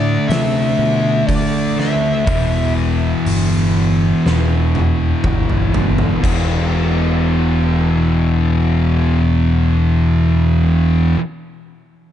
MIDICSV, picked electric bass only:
0, 0, Header, 1, 2, 480
1, 0, Start_track
1, 0, Tempo, 988468
1, 1097, Time_signature, 4, 2, 24, 8
1, 2541, Tempo, 998336
1, 5854, End_track
2, 0, Start_track
2, 0, Title_t, "Picked electric bass"
2, 0, Program_c, 0, 34
2, 0, Note_on_c, 0, 45, 82
2, 75, Note_off_c, 0, 45, 0
2, 142, Note_on_c, 0, 48, 92
2, 346, Note_off_c, 0, 48, 0
2, 382, Note_on_c, 0, 47, 105
2, 586, Note_off_c, 0, 47, 0
2, 624, Note_on_c, 0, 50, 103
2, 1033, Note_off_c, 0, 50, 0
2, 1106, Note_on_c, 0, 28, 100
2, 1514, Note_off_c, 0, 28, 0
2, 1583, Note_on_c, 0, 31, 83
2, 1994, Note_off_c, 0, 31, 0
2, 2069, Note_on_c, 0, 28, 87
2, 2479, Note_off_c, 0, 28, 0
2, 2547, Note_on_c, 0, 31, 100
2, 2956, Note_off_c, 0, 31, 0
2, 3025, Note_on_c, 0, 28, 105
2, 5380, Note_off_c, 0, 28, 0
2, 5854, End_track
0, 0, End_of_file